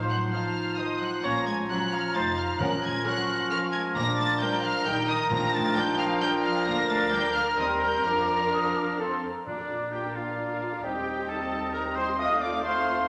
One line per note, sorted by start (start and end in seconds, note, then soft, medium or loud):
0.00 0.24 A1 medium
0.00 2.56 F3 medium
0.00 1.24 D#4 medium
0.00 1.24 C5 medium
0.00 0.32 C6 medium
0.09 0.32 F#3 medium
0.09 0.32 F#5 medium
0.09 0.17 F#6 medium
0.32 0.78 F3 medium
0.32 0.41 D#4 medium
0.32 0.41 C5 medium
0.32 0.79 F5 medium
0.32 0.77 A5 medium
0.32 0.77 F6 medium
0.77 0.86 D#3 medium
0.77 0.86 D#4 medium
0.77 0.86 C5 medium
0.77 1.01 D#5 medium
0.77 1.23 C6 medium
0.77 1.01 D#6 medium
1.01 1.09 F#3 medium
1.01 1.24 F#5 medium
1.01 1.24 F#6 medium
1.24 1.62 A#1 medium
1.24 1.40 F3 medium
1.24 1.46 A#3 medium
1.24 1.40 C#4 medium
1.24 2.17 C#4 medium
1.24 1.40 C#5 medium
1.24 2.17 C#5 medium
1.24 3.05 A#5 medium
1.24 1.47 A#5 loud
1.24 1.47 A#6 loud
1.46 1.70 G#3 loud
1.46 1.69 G#5 medium
1.46 1.54 G#6 loud
1.69 1.92 F#3 loud
1.69 1.78 C#4 medium
1.69 1.78 C#5 medium
1.69 1.77 F#5 medium
1.69 1.92 F#6 loud
1.92 2.15 F3 medium
1.92 2.00 F5 medium
1.92 2.15 F6 loud
2.14 2.53 F1 medium
2.14 2.30 F3 medium
2.14 2.23 A3 loud
2.14 2.30 D#4 medium
2.14 2.60 D#4 medium
2.14 2.24 D#4 medium
2.14 2.31 C5 medium
2.14 2.23 C5 medium
2.14 2.61 C5 medium
2.14 2.22 A5 loud
2.14 2.38 A6 loud
2.37 2.60 F3 medium
2.37 2.60 F5 medium
2.37 2.60 F6 loud
2.60 2.98 A#1 medium
2.60 3.23 A#2 loud
2.60 2.76 F3 medium
2.60 4.87 F3 medium
2.60 2.82 F#3 loud
2.60 2.76 C#4 medium
2.60 3.97 C#4 medium
2.60 5.03 A#4 medium
2.60 2.76 A#4 medium
2.60 2.68 F#5 loud
2.60 2.83 F#6 loud
2.82 2.91 G#3 loud
2.82 3.04 G#5 medium
2.82 3.05 G#6 loud
3.05 3.49 F#3 loud
3.05 3.13 C#4 medium
3.05 3.13 A#4 medium
3.05 3.50 F#5 loud
3.05 3.65 C#6 medium
3.05 3.50 F#6 loud
3.49 3.58 F3 loud
3.49 3.58 C#4 medium
3.49 3.58 A#4 medium
3.49 3.72 F5 loud
3.49 3.59 F6 loud
3.72 3.95 G#3 loud
3.72 3.95 G#5 loud
3.72 3.81 G#6 loud
3.95 4.33 A#1 loud
3.95 4.59 A#2 loud
3.95 4.82 F3 loud
3.95 4.03 A#3 loud
3.95 4.87 D4 medium
3.95 4.82 D4 loud
3.95 6.63 A#4 medium
3.95 4.03 A#5 loud
3.95 4.39 D6 loud
3.95 4.18 A#6 loud
4.17 4.40 A3 loud
4.17 4.40 A5 loud
4.17 4.40 A6 loud
4.40 4.63 G3 loud
4.40 4.49 D4 medium
4.40 4.49 A#4 medium
4.40 4.63 G5 loud
4.40 5.29 A#5 loud
4.40 4.63 G6 loud
4.63 4.86 F3 loud
4.63 4.86 F5 loud
4.63 4.86 F6 loud
4.85 5.23 A#1 loud
4.85 5.32 D#3 medium
4.85 5.31 D#3 medium
4.85 5.08 G3 loud
4.85 4.93 D#4 medium
4.85 5.33 D#4 loud
4.85 6.19 D#4 medium
4.85 4.93 A#4 medium
4.85 5.08 G5 loud
4.85 5.08 G6 loud
5.08 5.31 D#3 loud
5.08 5.31 D#5 loud
5.08 5.30 D#6 loud
5.31 5.69 A#1 loud
5.31 5.95 A#2 loud
5.31 7.58 F3 loud
5.31 7.30 F3 loud
5.31 5.54 A#3 loud
5.31 7.30 D4 loud
5.31 8.01 A#4 loud
5.31 6.66 G5 loud
5.31 5.53 A#5 loud
5.31 5.53 A#6 loud
5.53 5.76 A3 loud
5.53 5.76 A5 loud
5.53 5.76 A6 loud
5.76 5.99 G3 loud
5.76 5.84 D4 medium
5.76 5.84 A#4 medium
5.76 5.84 G5 loud
5.76 5.99 G6 loud
5.98 6.20 F3 loud
5.98 6.21 F5 loud
5.98 6.06 F6 loud
6.21 6.29 G3 loud
6.21 6.29 D4 medium
6.21 7.58 D4 loud
6.21 6.29 A#4 medium
6.21 6.44 G5 loud
6.21 6.29 G6 loud
6.43 6.66 F3 loud
6.43 6.66 F5 loud
6.43 6.66 F6 loud
6.66 7.54 D2 loud
6.66 6.74 A#3 loud
6.66 7.54 D4 loud
6.66 7.54 A#4 medium
6.66 8.96 A#4 loud
6.66 7.12 F5 medium
6.66 6.75 A#5 loud
6.66 6.89 A#6 loud
6.89 7.12 A3 loud
6.89 6.97 A5 loud
6.89 7.12 A6 loud
7.11 7.20 G3 loud
7.11 7.35 G5 loud
7.11 7.58 A#5 medium
7.11 7.35 G6 loud
7.35 7.43 F3 medium
7.35 7.43 F5 loud
7.35 7.58 F6 loud
7.58 8.05 D#2 medium
7.58 7.66 D#3 loud
7.58 8.04 G3 medium
7.58 8.07 G3 medium
7.58 8.05 C4 medium
7.58 8.07 C4 medium
7.58 8.05 C4 medium
7.58 8.03 A#4 medium
7.58 7.67 D#5 loud
7.58 8.04 C6 medium
7.58 7.82 D#6 loud
7.82 8.05 G3 medium
7.82 7.90 G5 medium
7.82 8.05 G6 loud
8.04 9.24 F2 medium
8.04 9.23 F3 medium
8.04 9.24 F3 medium
8.04 8.97 D4 medium
8.04 9.00 D4 medium
8.04 9.02 D4 medium
8.04 8.97 A#4 medium
8.04 9.01 A#4 medium
8.04 9.21 F5 medium
8.04 8.48 D6 medium
8.04 9.24 F6 loud
8.53 8.75 D#6 loud
8.76 9.00 D6 medium
8.99 9.26 C4 medium
8.99 9.23 C4 medium
8.99 9.24 C4 medium
8.99 9.26 A4 medium
8.99 9.23 A4 medium
8.99 9.23 C6 medium
9.23 9.47 A#5 medium
9.46 10.79 A#1 soft
9.46 10.11 A#2 medium
9.46 10.79 A#3 medium
9.46 9.58 A#3 soft
9.46 10.79 D4 medium
9.46 9.94 D4 medium
9.46 10.85 D4 soft
9.46 9.90 D4 soft
9.46 9.58 F4 soft
9.46 9.89 D5 soft
9.46 10.79 D5 soft
9.46 9.90 D5 medium
9.46 9.72 D5 soft
9.46 10.85 A#5 soft
9.58 9.70 D4 soft
9.58 9.70 A#4 soft
9.70 9.81 A#3 soft
9.70 9.81 F4 soft
9.81 9.93 D4 soft
9.81 9.93 A#4 soft
9.92 10.04 A#3 soft
9.92 10.04 F4 soft
9.92 10.17 G4 medium
9.92 10.01 G4 medium
9.92 10.01 G5 medium
9.92 10.15 G5 medium
10.04 10.15 D4 soft
10.04 10.15 A#4 soft
10.15 10.27 A#3 soft
10.15 10.82 F4 medium
10.15 10.27 F4 soft
10.15 10.83 F4 soft
10.15 10.84 F5 medium
10.15 10.82 F5 medium
10.27 10.38 D4 soft
10.27 10.38 A#4 soft
10.39 10.49 A#3 soft
10.39 10.49 F4 soft
10.50 10.61 D4 soft
10.50 10.61 A#4 soft
10.61 10.72 A#3 soft
10.61 10.72 F4 soft
10.72 10.84 D4 soft
10.72 10.84 A#4 soft
10.83 13.06 D#2 medium
10.83 12.16 G3 medium
10.83 10.94 G3 medium
10.83 12.16 C4 medium
10.83 12.18 C4 medium
10.83 10.94 D#4 medium
10.83 11.28 G4 medium
10.83 12.16 D#5 medium
10.83 11.28 G5 medium
10.83 12.18 G5 medium
10.83 11.29 G5 medium
10.95 11.06 C4 soft
10.95 11.06 G4 soft
11.07 11.18 G3 soft
11.07 11.18 D#4 soft
11.18 11.29 C4 soft
11.18 11.29 G4 soft
11.28 11.39 G3 medium
11.28 11.39 D#4 medium
11.28 11.74 A4 medium
11.28 11.73 A4 medium
11.28 11.73 A5 medium
11.28 11.74 A5 medium
11.41 11.51 C4 soft
11.41 11.51 G4 medium
11.52 11.63 G3 medium
11.52 11.63 D#4 soft
11.63 11.74 C4 soft
11.63 11.74 G4 soft
11.73 11.84 G3 soft
11.73 11.84 D#4 soft
11.73 11.97 A#4 medium
11.73 11.81 A#4 loud
11.73 11.95 A#5 medium
11.73 11.96 A#5 medium
11.73 11.82 A#5 medium
11.86 11.97 C4 medium
11.86 11.97 G4 medium
11.96 12.08 G3 medium
11.96 12.08 D#4 medium
11.96 12.18 C5 medium
11.96 12.18 C5 loud
11.96 12.19 C6 medium
12.09 12.19 C4 medium
12.09 12.19 G4 medium
12.18 12.61 A3 medium
12.18 12.62 A3 medium
12.18 12.62 C4 medium
12.18 12.30 C4 medium
12.18 12.30 F4 medium
12.18 12.43 D#5 medium
12.18 12.41 D#5 loud
12.18 12.61 F5 medium
12.18 12.41 D#6 loud
12.18 12.28 D#6 medium
12.31 12.42 A3 medium
12.31 12.42 D#4 medium
12.41 12.54 C4 medium
12.41 12.54 F4 medium
12.41 12.64 D5 medium
12.41 12.48 D6 medium
12.41 12.64 D6 medium
12.41 12.65 D6 medium
12.54 12.65 A3 medium
12.54 12.65 D#4 medium
12.64 13.08 A3 medium
12.64 13.08 C4 medium
12.64 12.76 C4 medium
12.64 12.76 F4 medium
12.64 13.08 C5 loud
12.64 13.08 C5 medium
12.64 13.08 F5 medium
12.64 13.08 C6 medium
12.77 12.88 A3 soft
12.77 12.88 D#4 medium
12.89 12.99 C4 soft
12.89 12.99 F4 medium
13.00 13.08 A3 soft
13.00 13.08 D#4 soft